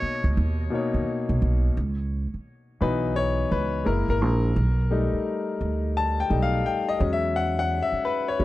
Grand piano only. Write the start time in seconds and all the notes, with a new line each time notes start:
Already playing: B2 A#3 D#4 C#5
0.70 B2 A#3 D#4
0.75 C#5
2.81 E3 F#3 B3 D#4 B4
3.16 C#5
3.52 B4
3.85 G#3 A#3 E4 A#4
4.10 A#4
4.90 G3 A3 D#4
5.97 A5
6.20 G5
6.30 G3 A3 D#4
6.43 F5
6.66 G5
6.89 D#5
6.99 F#3 G#3 C#4
7.13 E5
7.36 F#5
7.59 F#5
7.82 E5
8.05 B4
8.28 C#5
8.39 F#3 G#3 C#4